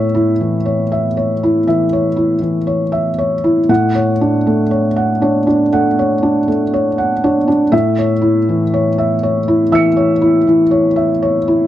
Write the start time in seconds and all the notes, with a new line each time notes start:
Already playing: A2 C#5 E5
0.15 E4
0.41 E3
0.65 C#5
0.92 E5
1.17 C#5
1.43 E4
1.67 E3 E5
1.93 C#5
2.16 E4
2.42 E3
2.67 C#5
2.92 E5
3.18 C#5
3.44 E4
3.69 A2 F#5
3.95 C#5
4.21 D4
4.47 A3
4.71 C#5
4.96 F#5
5.22 D4 C#5
5.47 D4
5.73 A3 F#5
5.99 C#5
6.23 D4
6.48 A3
6.74 C#5
6.98 F#5
7.24 D4 C#5
7.48 D4
7.72 A2 E5
7.98 C#5
8.22 E4
8.49 E3
8.74 C#5
8.98 E5
9.23 C#5
9.48 E4
9.72 E3 E5 E6 C#7
9.97 C#5
10.21 E4
10.47 E3
10.71 C#5
10.96 E5
11.22 C#5
11.48 E4